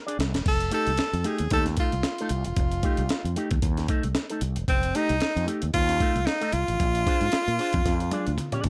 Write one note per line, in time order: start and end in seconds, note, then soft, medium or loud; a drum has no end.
0.00 0.15 A#4 loud
0.07 0.17 D4 medium
0.07 0.18 G#4 medium
0.07 0.19 D5 medium
0.07 closed hi-hat medium
0.19 0.32 C2 loud
0.19 muted clean electric guitar stroke soft
0.19 snare loud
0.19 closed hi-hat medium
0.33 0.45 E1 medium
0.33 muted clean electric guitar stroke medium
0.33 snare medium
0.33 closed hi-hat medium
0.46 0.69 F1 medium
0.46 0.71 A4 loud
0.46 kick loud
0.46 crash medium
0.60 closed hi-hat medium
0.71 0.90 A3 medium
0.71 0.91 D#4 loud
0.71 0.91 G4 loud
0.71 1.28 A4 loud
0.71 closed hi-hat medium
0.87 0.97 C2 medium
0.87 closed hi-hat soft
0.97 muted fretless electric bass stroke soft
0.97 snare loud
0.97 closed hi-hat medium
1.13 1.24 F2 loud
1.13 muted clean electric guitar stroke medium
1.13 closed hi-hat soft
1.24 1.43 A3 medium
1.24 1.40 D#4 medium
1.24 1.39 G4 medium
1.24 1.52 G#4 medium
1.24 closed hi-hat medium
1.38 1.50 D#2 medium
1.38 muted clean electric guitar stroke medium
1.38 closed hi-hat medium
1.50 1.75 D#2 loud
1.50 1.70 A3 medium
1.50 1.67 D#4 medium
1.50 1.66 G4 loud
1.50 1.65 A4 loud
1.50 kick loud
1.50 closed hi-hat loud
1.66 muted clean electric guitar stroke soft
1.66 snare soft
1.66 closed hi-hat medium
1.77 1.94 A3 medium
1.77 1.93 D#4 medium
1.77 2.42 F4 medium
1.77 1.94 A4 medium
1.77 kick loud
1.77 closed hi-hat medium
1.92 2.03 C2 medium
1.92 muted clean electric guitar stroke soft
1.92 closed hi-hat soft
2.03 muted clean electric guitar stroke soft
2.03 snare loud
2.03 closed hi-hat medium
2.18 2.30 A3 medium
2.18 2.30 D#4 medium
2.18 2.32 A4 loud
2.18 closed hi-hat medium
2.29 2.44 C2 loud
2.29 muted clean electric guitar stroke soft
2.29 closed hi-hat medium
2.45 2.56 E1 medium
2.45 3.47 F4 medium
2.45 muted clean electric guitar stroke medium
2.45 closed hi-hat medium
2.56 2.81 F1 loud
2.56 kick loud
2.56 closed hi-hat medium
2.72 closed hi-hat soft
2.83 3.02 A3 medium
2.83 3.02 D#4 medium
2.83 3.02 G4 medium
2.83 kick loud
2.83 closed hi-hat medium
2.97 3.09 C2 loud
2.97 closed hi-hat medium
3.09 muted fretless electric bass stroke soft
3.09 snare loud
3.09 closed hi-hat medium
3.24 3.35 F2 medium
3.24 muted clean electric guitar stroke medium
3.24 closed hi-hat soft
3.36 3.55 A3 medium
3.36 3.50 D#4 medium
3.36 3.50 G4 medium
3.36 closed hi-hat medium
3.51 3.61 D#2 medium
3.51 muted clean electric guitar stroke soft
3.51 kick loud
3.51 closed hi-hat medium
3.62 3.86 D#2 medium
3.62 kick loud
3.62 closed hi-hat loud
3.77 muted clean electric guitar stroke soft
3.77 snare soft
3.77 closed hi-hat soft
3.88 4.07 A3 medium
3.88 4.04 D#4 medium
3.88 4.04 A4 medium
3.88 kick loud
3.88 closed hi-hat medium
4.03 4.14 C2 medium
4.03 muted clean electric guitar stroke soft
4.03 closed hi-hat medium
4.15 muted clean electric guitar stroke soft
4.15 snare loud
4.15 closed hi-hat medium
4.30 4.41 A3 medium
4.30 4.42 D#4 medium
4.30 4.43 A4 medium
4.30 closed hi-hat medium
4.41 4.55 C2 loud
4.41 closed hi-hat medium
4.56 4.67 E1 medium
4.56 muted clean electric guitar stroke soft
4.56 closed hi-hat medium
4.68 4.92 F1 loud
4.68 4.97 C4 loud
4.68 kick loud
4.68 closed hi-hat medium
4.83 closed hi-hat medium
4.95 5.14 A3 medium
4.95 5.48 D#4 loud
4.95 5.14 D#4 medium
4.95 5.14 G4 medium
4.95 closed hi-hat medium
5.09 5.20 C2 loud
5.09 closed hi-hat medium
5.20 muted fretless electric bass stroke soft
5.20 snare loud
5.20 closed hi-hat medium
5.36 5.47 F2 loud
5.36 muted clean electric guitar stroke medium
5.36 closed hi-hat soft
5.46 5.66 A3 medium
5.46 5.62 D#4 medium
5.46 5.62 G4 medium
5.46 closed hi-hat medium
5.62 5.73 D#2 loud
5.62 muted clean electric guitar stroke soft
5.62 closed hi-hat medium
5.74 5.98 D#2 loud
5.74 6.27 F4 loud
5.74 kick medium
5.74 closed hi-hat loud
5.88 muted clean electric guitar stroke soft
5.88 snare soft
5.88 closed hi-hat medium
6.00 6.19 A3 medium
6.00 6.15 D#4 medium
6.00 6.15 A4 loud
6.00 kick loud
6.00 closed hi-hat medium
6.15 6.26 C2 loud
6.15 muted clean electric guitar stroke soft
6.15 closed hi-hat soft
6.26 6.55 D#4 loud
6.26 muted clean electric guitar stroke soft
6.26 snare loud
6.26 closed hi-hat medium
6.41 6.51 A3 medium
6.41 6.52 D#4 medium
6.41 6.53 A4 loud
6.41 closed hi-hat medium
6.52 6.66 C2 loud
6.52 8.65 F4 loud
6.52 muted clean electric guitar stroke soft
6.52 closed hi-hat medium
6.68 6.80 A1 medium
6.68 muted clean electric guitar stroke soft
6.68 closed hi-hat soft
6.80 7.04 A#1 loud
6.80 kick loud
6.80 closed hi-hat medium
6.95 closed hi-hat medium
7.07 7.25 D4 medium
7.07 7.25 G#4 medium
7.07 7.26 C5 loud
7.07 kick loud
7.07 closed hi-hat medium
7.21 7.32 G#2 medium
7.21 closed hi-hat soft
7.32 muted fretless electric bass stroke soft
7.32 snare loud
7.32 closed hi-hat medium
7.48 7.58 A#2 loud
7.48 muted clean electric guitar stroke medium
7.48 closed hi-hat soft
7.59 7.78 D4 medium
7.59 7.75 G#4 medium
7.59 7.74 C5 medium
7.59 open hi-hat medium
7.73 7.84 F2 loud
7.73 muted clean electric guitar stroke soft
7.73 kick loud
7.73 closed hi-hat medium
7.85 8.09 F2 loud
7.85 kick medium
7.85 snare medium
7.85 closed hi-hat medium
8.00 muted clean electric guitar stroke soft
8.00 closed hi-hat medium
8.11 8.31 D4 medium
8.11 8.26 G#4 medium
8.11 8.27 D5 medium
8.11 closed hi-hat medium
8.11 high tom medium
8.27 8.38 D2 medium
8.27 muted clean electric guitar stroke soft
8.27 closed hi-hat soft
8.38 muted clean electric guitar stroke soft
8.38 closed hi-hat medium
8.38 mid tom medium
8.52 8.64 D4 medium
8.52 8.64 G#4 medium
8.52 8.65 D5 loud
8.52 closed hi-hat medium
8.52 mid tom medium
8.64 8.69 D2 loud
8.64 closed hi-hat medium
8.64 floor tom loud